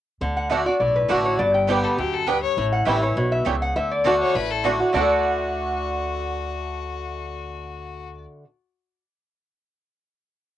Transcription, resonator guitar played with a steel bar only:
0.37 F#5
0.50 E5
0.66 D5
0.80 D5
0.96 B4
1.25 C#5
1.39 D5
1.54 G5
2.73 F#5
2.87 E5
3.03 C#5
3.17 C#5
3.32 E5
3.62 F#5
3.76 E5
3.91 D5
4.94 D5

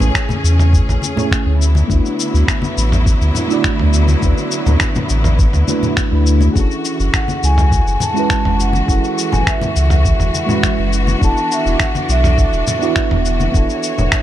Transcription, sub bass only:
0.01 A1
0.44 E2
0.89 A1
1.46 D2
1.90 D2
2.34 D2
2.77 A1
3.21 D2
3.80 D2
4.23 D2
4.66 D2
5.10 A1
5.54 D2
6.12 D2
6.56 F#1
7.00 F#1
7.43 C#2
7.87 F#1
8.45 F#1
8.88 F#1
9.33 F#1
9.76 C#2
10.20 F#1
10.79 F#1
11.22 E1
11.66 E1
12.09 B1
12.53 E1
13.11 E1
13.54 E1
13.98 E1

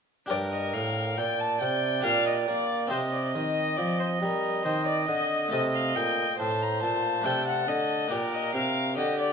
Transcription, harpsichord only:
0.26 D4 G4 A#4
0.31 G2
0.74 A2
1.18 A#2
1.62 C3
2.00 D4 G4 A#4
2.05 A#2
2.48 A#3
2.87 C4 D#4 G4
2.92 C3
3.35 D#3
3.79 F3
4.23 G3
4.66 D#3
5.09 D3
5.48 A3 D#4 A4
5.53 C3
5.96 A#2
6.40 A2
6.83 A#2
7.22 A3 D4 A4
7.26 C3
7.69 D3
8.08 A#3 D4 G4
8.12 A#2
8.55 C3
8.98 D3

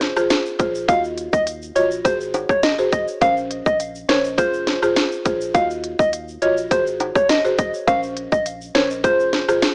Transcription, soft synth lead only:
Already playing: C5
0.88 F5
1.33 D#5
1.76 C#5
2.05 C5
2.49 C#5
2.63 D#5
2.92 D#5
3.22 F5
3.66 D#5
4.09 C#5
4.38 C5
5.55 F5
5.99 D#5
6.42 C#5
6.71 C5
7.16 C#5
7.29 D#5
7.59 D#5
7.88 F5
8.32 D#5
8.75 C#5
9.04 C5

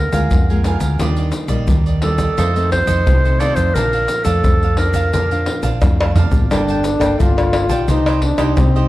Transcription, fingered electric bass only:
0.13 D2
0.32 F2
0.82 D2
1.01 D#2
1.50 A#1
1.70 D#2
2.38 F2
2.88 F2
3.07 C2
3.57 F2
3.76 A#1
4.26 F2
4.46 F2
5.63 A#1
5.82 F2
6.31 A1
6.50 G1
7.00 G1
7.19 G1
7.69 A#1
7.89 C2
8.38 C2
8.58 C3

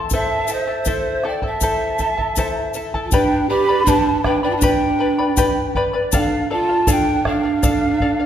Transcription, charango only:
Already playing: E4 A4 A5
0.13 E4 A4 C5 E5 A5
0.48 E4 A4 E5 A5
0.67 E4 A4 A5
0.87 E4 A4 C5 E5 A5
1.24 E4 A4 E5 A5
1.43 E4 A4 A5
1.62 E4 A4 C5 E5 A5
1.99 E4 A4 E5 A5
2.18 E4 A4 A5
2.38 E4 A4 C5 E5 A5
2.75 E4 A4 E5 A5
2.94 E4 A4 A5
3.13 G4 B4 D5 G5 B5
3.50 B4 D5 G5 B5
3.69 B4 D5 B5
3.87 G4 B4 D5 G5 B5
4.25 B4 D5 G5 B5
4.43 B4 D5 B5
4.62 G4 B4 D5 G5 B5
4.99 B4 D5 G5 B5
5.19 B4 D5 B5
5.37 G4 B4 D5 G5 B5
5.75 B4 D5 G5 B5
5.93 B4 D5 B5
6.13 A4 D5 F5
6.50 A4 D5 F5
6.69 D5 F5
6.87 A4 D5 F5
7.25 A4 D5 F5
7.43 D5 F5
7.63 A4 D5 F5
8.01 A4 D5 F5
8.19 D5 F5

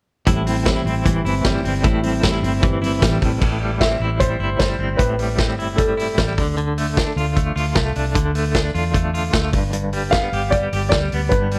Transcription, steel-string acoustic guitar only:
0.26 A2 E3 G3 C4 E4
0.47 G3 C4 E4
0.66 A2 E3 G3 C4 E4
0.86 G3 C4 E4
1.07 E3 G3 C4 E4
1.25 G3 C4 E4
1.45 A2 E3 G3 C4 E4
1.64 G3 C4 E4
1.84 A2 E3 G3 C4 E4
2.03 G3 C4 E4
2.23 A2 E3 G3 C4 E4
2.43 G3 C4 E4
2.62 E3 G3 C4 E4
2.81 G3 C4 E4
3.01 A2 E3 G3 C4 E4
3.20 G3 C4 E4

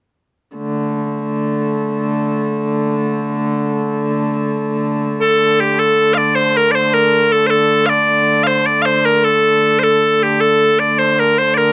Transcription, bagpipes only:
5.21 A4
5.60 G4
5.79 A4
6.14 D5 F5
6.35 C5
6.57 A#4
6.71 C5 D5
6.94 A#4
7.32 A4
7.47 A4 C5
7.86 D5 F5
8.43 C5 F5
8.66 D5
8.82 C5 F5
9.05 A#4
9.24 A4
9.79 C5
9.83 A4
10.23 G4
10.40 A4
10.79 D5
10.99 C5
11.20 A#4
11.38 C5
11.54 A#4 D5

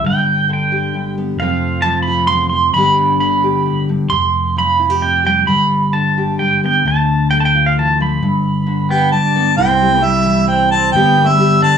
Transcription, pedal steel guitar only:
0.06 G5
0.53 G5
1.40 F5
1.82 A5
2.02 B5
2.27 C6
2.50 C6
2.74 B5
3.20 B5
4.10 C6
4.58 B5
5.02 G5
5.26 G5
5.47 B5
5.93 A5
6.39 G5
6.66 G5
6.88 A5
7.31 G5
7.40 A5
7.45 G5
7.66 F5
7.79 A5
8.02 B5
8.91 B3
9.13 D4
9.61 C4
10.03 G3
10.48 C4
10.73 C4
10.96 B3
11.29 G3
11.62 D4

